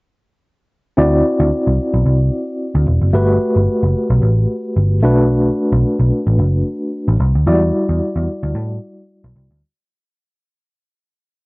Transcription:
0.97 1.21 D2 loud
0.97 3.10 C4 medium
0.97 3.10 E4 medium
0.97 3.10 F#4 medium
0.97 3.10 D5 medium
1.40 1.50 D2 loud
1.67 1.77 C2 medium
1.94 2.04 B1 medium
2.06 2.29 C2 medium
2.75 2.85 D2 medium
2.87 3.00 E1 medium
3.02 3.12 F#1 medium
3.14 3.37 G1 loud
3.14 4.99 A3 medium
3.14 4.99 F#4 medium
3.14 5.00 G4 medium
3.14 5.00 B4 medium
3.56 3.66 G1 loud
3.83 3.93 F#1 medium
4.10 4.20 B1 loud
4.22 4.45 A1 medium
4.76 5.03 G1 medium
5.03 5.49 B1 loud
5.03 7.15 A3 medium
5.03 7.16 D4 medium
5.03 7.16 F#4 medium
5.03 7.16 B4 medium
5.72 5.82 B1 loud
5.99 6.10 B1 medium
6.27 6.37 A1 medium
6.38 6.61 F#1 loud
7.08 7.18 A1 medium
7.20 7.32 C2 medium
7.35 7.45 D2 medium
7.46 7.70 E2 loud
7.46 7.54 F#3 medium
7.46 9.59 E4 medium
7.46 9.59 F#4 medium
7.46 9.59 D5 medium
7.53 9.62 G3 medium
7.89 7.99 E2 medium
8.16 8.26 E2 medium
8.43 8.53 D2 loud
8.55 8.78 A2 loud
9.24 9.34 B1 medium
9.36 9.49 C2 medium
9.51 9.61 D2 medium

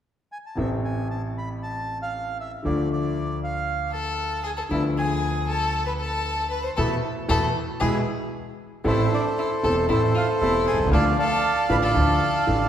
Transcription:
0.32 0.38 G#5 medium
0.46 0.58 A5 soft
0.55 2.54 A1 soft
0.55 2.55 A1 medium
0.55 2.55 A2 soft
0.55 2.54 C3 soft
0.55 2.54 E3 soft
0.55 2.55 A3 soft
0.55 0.70 E5 medium
0.60 2.56 C4 soft
0.84 1.08 G#5 medium
1.11 1.22 A5 medium
1.38 1.49 B5 medium
1.63 1.99 A5 medium
2.02 2.38 F5 medium
2.40 2.52 E5 medium
2.63 4.61 D2 soft
2.63 4.61 D2 medium
2.63 2.64 D3 soft
2.63 4.61 D3 soft
2.63 4.61 F3 soft
2.63 4.61 A3 soft
2.63 4.62 F4 soft
2.63 2.89 D5 medium
2.93 3.40 D5 medium
3.44 3.91 F5 medium
3.92 4.41 A4 medium
3.92 4.47 A5 medium
4.43 4.50 G#4 medium
4.43 4.52 G#5 medium
4.57 4.63 A4 medium
4.57 4.65 A5 medium
4.71 6.67 D2 medium
4.71 6.67 D3 medium
4.71 6.67 F3 soft
4.71 6.68 B3 soft
4.71 4.82 E4 medium
4.71 6.68 F4 soft
4.71 4.85 E5 medium
4.97 5.45 G#4 medium
4.97 5.51 G#5 medium
5.48 5.84 A4 medium
5.48 5.85 A5 medium
5.86 5.92 B4 medium
5.86 5.93 B5 medium
5.99 6.48 A4 medium
5.99 6.54 A5 medium
6.50 6.62 B4 medium
6.50 6.64 B5 medium
6.63 6.69 C5 medium
6.63 6.72 C6 medium
6.77 6.97 E2 medium
6.77 6.94 B2 medium
6.77 6.94 E3 medium
6.77 6.95 A3 medium
6.77 6.94 A4 medium
6.77 6.95 E5 medium
6.77 6.96 A5 medium
6.77 6.96 B5 medium
7.28 7.49 E2 medium
7.28 7.46 B2 medium
7.28 7.45 E3 medium
7.28 7.46 A3 medium
7.28 7.46 A4 medium
7.28 7.47 E5 medium
7.28 7.47 A5 medium
7.28 7.47 B5 medium
7.80 8.01 E2 medium
7.80 7.98 B2 medium
7.80 7.98 E3 medium
7.80 7.98 G#3 medium
7.80 7.97 G#4 medium
7.80 7.98 E5 medium
7.80 7.98 G#5 medium
7.80 7.98 B5 medium
8.84 9.07 A1 medium
8.84 9.07 A2 medium
8.84 9.07 E3 medium
8.84 9.07 A3 medium
8.84 9.07 C4 medium
8.84 9.10 E4 medium
8.84 9.07 A4 medium
8.84 9.86 A4 soft
8.84 9.86 C5 soft
8.84 9.11 E5 medium
9.12 9.24 D4 medium
9.12 9.25 D5 medium
9.39 9.50 E4 medium
9.39 9.50 E5 medium
9.63 9.85 E1 soft
9.63 9.85 E1 medium
9.63 9.85 E2 soft
9.63 9.85 E3 soft
9.63 9.85 A3 soft
9.63 9.85 C4 soft
9.63 9.76 A4 medium
9.63 9.86 A4 medium
9.63 9.77 A5 medium
9.88 10.11 A1 medium
9.88 10.11 A2 medium
9.88 10.11 E3 soft
9.88 10.11 A3 soft
9.88 10.11 C4 soft
9.88 10.01 E4 medium
9.88 10.11 A4 soft
9.88 10.89 A4 soft
9.88 10.90 C5 medium
9.88 10.03 E5 medium
10.15 10.27 F4 medium
10.15 10.29 F5 medium
10.41 10.63 E1 medium
10.41 10.63 E2 medium
10.41 10.63 E3 soft
10.41 10.63 A3 soft
10.41 10.63 C4 soft
10.41 10.65 E4 medium
10.41 10.63 A4 soft
10.41 10.65 E5 medium
10.67 10.78 G#4 medium
10.67 10.79 G#5 medium
10.73 10.79 B1 soft
10.79 10.86 C2 medium
10.79 10.85 C2 medium
10.86 10.91 C#2 medium
10.86 10.93 C#2 medium
10.91 11.14 D2 medium
10.91 11.14 D3 medium
10.91 11.14 F3 medium
10.91 11.14 A3 soft
10.91 11.14 F4 medium
10.91 11.05 A4 medium
10.91 11.18 D5 medium
10.91 11.18 F5 medium
10.91 11.05 A5 medium
11.19 11.67 A4 medium
11.19 11.84 D5 medium
11.19 11.83 F5 medium
11.19 11.67 A5 medium
11.69 11.91 A1 medium
11.69 11.91 A2 medium
11.69 11.91 D3 soft
11.69 11.91 F3 soft
11.69 11.91 A3 soft
11.69 11.91 F4 soft
11.69 11.75 B4 medium
11.69 11.77 B5 loud
11.82 12.68 A4 medium
11.82 12.69 D5 medium
11.82 12.69 F5 medium
11.82 12.69 A5 medium
11.94 12.17 D2 medium
11.94 12.17 D3 medium
11.94 12.17 F3 soft
11.94 12.16 A3 soft
11.94 12.17 F4 medium
12.47 12.69 A1 soft
12.47 12.69 A1 medium
12.47 12.68 A2 medium
12.47 12.69 D3 soft
12.47 12.69 F3 soft
12.47 12.68 A3 soft
12.47 12.69 F4 medium

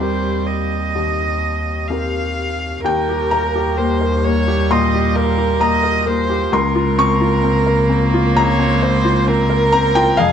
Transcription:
0.00 0.95 D#2 soft
0.00 2.84 D#2 medium
0.00 1.88 G3 medium
0.00 0.90 C4 soft
0.00 0.91 G4 soft
0.00 0.91 A#4 soft
0.00 0.48 C5 medium
0.46 1.89 D#5 medium
0.95 1.86 D#2 soft
1.88 2.81 C4 soft
1.88 2.81 G4 soft
1.88 2.81 A#4 soft
1.88 2.84 F5 medium
2.83 4.66 D#2 medium
2.83 6.54 D#2 medium
2.83 6.48 G3 medium
2.83 3.79 A#4 medium
2.83 3.29 G5 medium
3.09 3.46 G4 medium
3.31 3.69 A#4 medium
3.31 4.66 A#5 medium
3.55 3.92 G4 medium
3.78 4.15 A#3 medium
3.78 4.26 C5 medium
4.01 4.38 A#4 medium
4.24 4.62 A#3 medium
4.24 4.73 C#5 medium
4.48 4.84 G4 medium
4.70 5.07 A#2 medium
4.70 5.17 D#5 medium
4.70 5.58 C6 medium
4.94 5.30 G4 medium
5.16 5.52 A#4 medium
5.16 5.62 A#4 medium
5.38 5.75 G4 medium
5.60 5.97 A#3 medium
5.60 6.09 D#5 medium
5.60 6.49 A#5 loud
5.83 6.20 A#4 medium
6.06 6.43 A#3 medium
6.06 6.55 C5 medium
6.29 6.53 G4 medium
6.52 8.32 C#2 medium
6.52 10.19 C#2 medium
6.52 10.13 A#3 loud
6.52 8.35 A#4 medium
6.52 6.95 C6 medium
6.75 7.12 F4 medium
6.98 7.35 C4 medium
6.98 8.32 C#6 loud
7.21 7.58 F4 medium
7.44 7.81 C4 medium
7.66 8.03 A#4 medium
7.90 8.26 C4 medium
8.14 8.50 F4 medium
8.36 10.13 C#2 medium
8.36 8.83 C#5 medium
8.36 9.68 A#5 loud
8.59 8.95 C4 medium
8.82 9.30 C5 medium
8.82 9.18 C5 medium
9.05 9.41 F4 medium
9.27 9.63 C4 medium
9.27 10.20 A#4 loud
9.49 9.86 A#4 medium
9.72 10.09 C4 medium
9.72 9.93 A#5 loud
9.95 10.18 F4 medium
9.95 10.16 G5 loud
10.17 10.32 F1 medium
10.17 10.32 F2 medium
10.17 10.32 G#3 loud
10.17 10.32 G#4 loud
10.17 10.32 F5 loud

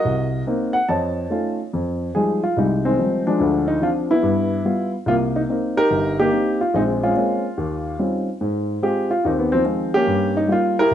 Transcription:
0.00 0.71 F#4 medium
0.00 0.71 A#4 medium
0.00 0.42 D#5 loud
0.05 0.41 C2 medium
0.47 0.75 A#3 medium
0.47 0.75 C4 soft
0.47 0.75 D#4 medium
0.73 0.87 F#5 medium
0.89 1.25 F2 medium
0.89 1.69 C#5 medium
0.89 1.69 D#5 medium
0.89 1.53 A5 medium
1.30 1.59 A3 soft
1.30 1.59 C#4 soft
1.30 1.59 D#4 soft
1.30 1.59 F4 medium
1.73 2.09 F2 medium
2.15 2.43 F3 soft
2.15 2.43 G3 soft
2.15 2.43 G#3 soft
2.15 2.44 D#4 medium
2.15 2.39 G#4 medium
2.44 2.57 F4 medium
2.57 2.92 C2 medium
2.57 2.98 G3 medium
2.57 2.84 G#3 medium
2.57 2.82 D#4 medium
2.85 3.37 D#3 medium
2.85 2.97 G#3 medium
2.85 3.23 C4 medium
2.99 3.26 F3 soft
2.99 3.27 G3 soft
2.99 3.26 G#3 soft
2.99 3.27 D#4 medium
3.27 3.80 F3 medium
3.27 4.05 G#3 medium
3.27 3.65 D4 medium
3.39 3.76 D2 medium
3.39 3.75 D3 medium
3.68 3.81 D#4 medium
3.81 4.10 F3 medium
3.81 4.10 C4 soft
3.81 4.10 D4 medium
3.81 3.89 F4 medium
4.11 4.64 B3 medium
4.11 4.89 E4 loud
4.23 4.59 G2 medium
4.65 4.93 G3 soft
4.65 4.94 B3 soft
4.65 4.94 F4 medium
5.06 5.43 C2 medium
5.06 5.48 A#3 medium
5.06 5.14 F4 loud
5.36 5.41 D#4 medium
5.49 5.77 A#3 medium
5.49 5.77 C4 soft
5.49 5.76 D#4 medium
5.77 6.18 D#4 medium
5.77 6.18 G4 medium
5.77 6.15 A#4 loud
5.91 6.27 G1 medium
6.20 6.30 A#3 medium
6.20 6.31 D#4 medium
6.20 6.61 G4 loud
6.32 6.60 A#3 soft
6.32 6.60 C4 soft
6.32 6.61 D#4 medium
6.61 6.74 F4 medium
6.74 7.10 A#1 medium
6.74 7.02 G#3 medium
6.74 7.15 C4 medium
6.74 6.81 D#4 medium
7.03 7.14 G#3 medium
7.03 7.15 C#4 medium
7.03 7.99 F4 medium
7.16 7.44 G#3 soft
7.16 7.44 A#3 soft
7.16 7.44 C4 soft
7.16 7.44 C#4 medium
7.57 7.94 D#2 medium
7.99 8.28 G3 soft
7.99 8.28 C4 soft
7.99 8.28 C#4 soft
7.99 8.28 D#4 soft
7.99 8.28 F4 medium
8.41 8.77 G#2 medium
8.83 9.11 G#3 medium
8.83 9.11 C4 soft
8.83 9.09 F4 medium
8.83 9.11 G4 medium
9.11 9.24 F4 medium
9.25 9.61 D#2 medium
9.25 9.53 D#3 medium
9.25 9.51 C4 medium
9.25 9.31 D#4 medium
9.39 9.52 B3 medium
9.52 10.06 D#3 medium
9.52 10.06 F3 medium
9.52 9.64 C4 medium
9.64 9.94 G#3 soft
9.64 9.94 C4 soft
9.94 10.48 A#3 medium
9.94 10.74 C#4 medium
9.94 10.37 G4 loud
10.07 10.44 G2 medium
10.37 10.51 D#4 medium
10.48 10.77 G3 medium
10.48 10.78 A#3 soft
10.48 10.51 F4 medium
10.52 10.76 F4 loud
10.79 10.94 E4 medium
10.79 10.94 G4 medium
10.79 10.94 A#4 loud
10.91 10.94 C2 medium

